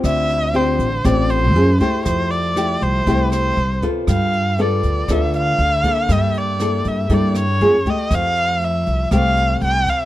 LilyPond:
<<
  \new Staff \with { instrumentName = "Erhu" } { \time 4/4 \key f \major \tempo 4 = 119 e''4 c''4 d''8 c''4 c''8 | c''8 d''4 c''4 c''4 r8 | f''4 d''4 e''8 f''4. | e''8 d''4 e''8 d''8 des''4 ees''8 |
f''4 e''4 f''4 g''8 f''8 | }
  \new Staff \with { instrumentName = "Nylon-string guitar" } { \time 4/4 \key f \major << { <c' f' g'>4 <c' f' g'>8 r8 <c' f' g'>4 <bes f' aes'>8 <a e' g'>8~ | <a e' g'>4 <a e' g'>4 <a e' g'>4 r8 <b f' a'>8~ | <b f' a'>4 <b f' a'>4 <b f' a'>4 r8 <bes e' a'>8~ | <bes e' a'>4 <bes e' a'>4 <bes e' a'>8 r8 <bes f' aes'>8 <a g'>8~ |
<a g'>4 r4 <a g'>4. r8 | } \\ { d2 a,4 r4 | f2 c2 | g2 d2 | g2 g4 r4 |
f2 c2 | } >> }
  \new Staff \with { instrumentName = "Upright bass" } { \clef bass \time 4/4 \key f \major d,4. a,,8 a,,4 ges,8 r8 | f,4. c,8 c,4 c,8 r8 | g,4. d,8 d,4 d,8 r8 | g,4. g,8 g,4 ges,8 r8 |
f,4. c,8 c,4 c,8 r8 | }
  \new DrumStaff \with { instrumentName = "Drums" } \drummode { \time 4/4 <hh bd ss>8 hh8 hh8 hh8 <hh bd ss>8 hh8 hh8 <hh bd>8 | <hh bd ss>8 hh8 <hh ss>8 hh8 <hh bd>8 <hh ss>8 hh8 <hh bd>8 | <hh bd ss>8 hh8 hh8 hh8 <hh bd ss>8 hh8 hh8 <hh bd>8 | <hh bd ss>8 hh8 <hh ss>8 hh8 <hh bd>8 <hh ss>8 hh8 <hh bd>8 |
<hh bd ss>8 hh8 hh8 hh8 <hh bd ss>8 hh8 hh8 <hh bd>8 | }
>>